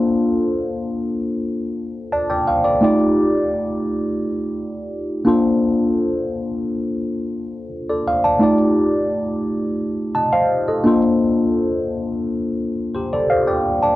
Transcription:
\new Staff \with { instrumentName = "Tine electric piano" } { \time 4/4 \key bes \major \tempo 4 = 86 << { r2. <d'' a''>16 <d'' g''>16 <c'' f''>16 <a' d''>16~ | <a' d''>16 r2. r8. | r2. r16 <a' d''>16 <c'' f''>16 <d'' a''>16~ | <d'' a''>16 r2 r16 <ees'' a''>16 <c'' f''>8 <a' ees''>8 r16 |
r2 r8 <g' c''>16 <a' d''>16 <c'' f''>16 <d'' g''>8 <d'' a''>16 | } \\ { <bes d' f' a' c''>2.~ <bes d' f' a' c''>8 r8 | <a ees' f' g' d''>2.~ <a ees' f' g' d''>8 <bes d' f' a' c''>8~ | <bes d' f' a' c''>2.~ <bes d' f' a' c''>8 r8 | <a ees' f' g' d''>2.~ <a ees' f' g' d''>8 <bes d' f' a' c''>8~ |
<bes d' f' a' c''>2.~ <bes d' f' a' c''>8 r8 | } >> }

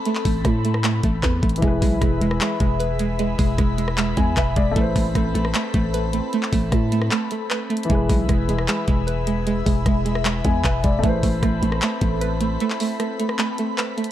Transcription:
<<
  \new Staff \with { instrumentName = "Grand piano" } { \time 4/4 \key a \minor \tempo 4 = 153 << { r1 | r1 | r2 r8 gis''8 e''8 d''8 | r1 |
r1 | r1 | r2 r8 gis''8 e''8 d''8 | r1 |
r1 | } \\ { r1 | <e e' gis' b'>1~ | <e e' gis' b'>1 | <a e' b' c''>1~ |
<a e' b' c''>1 | <e e' gis' b'>1~ | <e e' gis' b'>1 | <a e' b' c''>1~ |
<a e' b' c''>1 | } >> }
  \new Staff \with { instrumentName = "Analog synth pad" } { \time 4/4 \key a \minor << { b''1 | b''1~ | b''1~ | b''1~ |
b''1 | b''1~ | b''1~ | b''1~ |
b''1 | } \\ { <c' a'>1 | <gis' e''>1~ | <gis' e''>1 | <c' a'>1~ |
<c' a'>1 | <gis' e''>1~ | <gis' e''>1 | <c' a'>1~ |
<c' a'>1 | } >> }
  \new Staff \with { instrumentName = "Synth pluck" } { \time 4/4 \key a \minor <a b'>8 a8 a8 a8 a8 a8 b'8 a8 | gis8 gis8 gis8 gis8 gis8 gis8 b'8 gis8 | gis8 gis8 gis8 gis8 gis8 gis8 b'8 gis8 | a8 a8 a8 a8 a8 a8 b'8 a8 |
a8 a8 a8 a8 a8 a8 b'8 a8 | gis8 gis8 gis8 gis8 gis8 gis8 b'8 gis8 | gis8 gis8 gis8 gis8 gis8 gis8 b'8 gis8 | a8 a8 a8 a8 a8 a8 b'8 a8 |
a8 a8 a8 a8 a8 a8 b'8 a8 | }
  \new Staff \with { instrumentName = "808-style bass" } { \clef bass \time 4/4 \key a \minor r8 a,,8 a,4. a,,8 e,8 a,,8 | e,,8 b,,8 e,,8 e,,8 r8 e,,4.~ | e,,8 e,,8 e,,4. e,8 e,,8 e,,8 | a,,8 a,,8 a,,8 a,,8 r8 a,,4~ a,,16 r16 |
r8 a,,8 a,4 r2 | e,,8 b,,8 e,,8 e,,8 r8 e,,4.~ | e,,8 e,,8 e,,4. e,8 e,,8 e,,8 | a,,8 a,,8 a,,8 a,,8 r8 a,,4. |
r1 | }
  \new DrumStaff \with { instrumentName = "Drums" } \drummode { \time 4/4 hh16 hc16 <hho bd>8 <hh bd ss>8 hh16 ss16 <hc hh>8 <hh bd>8 \tuplet 3/2 { <hc hh bd>16 r16 r16 <hh bd>16 hh16 hh16 } | <hh bd>8 <hho bd>8 <hh bd ss>8 hh16 ss16 <hc hh>8 <hh bd>8 hh8 hh8 | hh8 <hho bd>8 <hh bd ss>8 hh16 ss16 <hc hh>8 <hh bd>8 <hc hh bd>8 <hh bd>8 | <hh bd>8 <hho bd>8 <hh bd ss>8 hh16 ss16 <hc hh>8 <hh bd>8 hh8 hh8 |
hh16 hc16 <hho bd>8 <hh bd ss>8 hh16 ss16 <hc hh>8 hh8 \tuplet 3/2 { <hc hh>16 r16 r16 hh16 hh16 hh16 } | <hh bd>8 <hho bd>8 <hh bd ss>8 hh16 ss16 <hc hh>8 <hh bd>8 hh8 hh8 | hh8 <hho bd>8 <hh bd ss>8 hh16 ss16 <hc hh>8 <hh bd>8 <hc hh bd>8 <hh bd>8 | <hh bd>8 <hho bd>8 <hh bd ss>8 hh16 ss16 <hc hh>8 <hh bd>8 hh8 hh8 |
hh16 hc16 hho8 <hh ss>8 hh16 ss16 <hc hh>8 hh8 \tuplet 3/2 { <hc hh>16 r16 r16 hh16 hh16 r16 } | }
>>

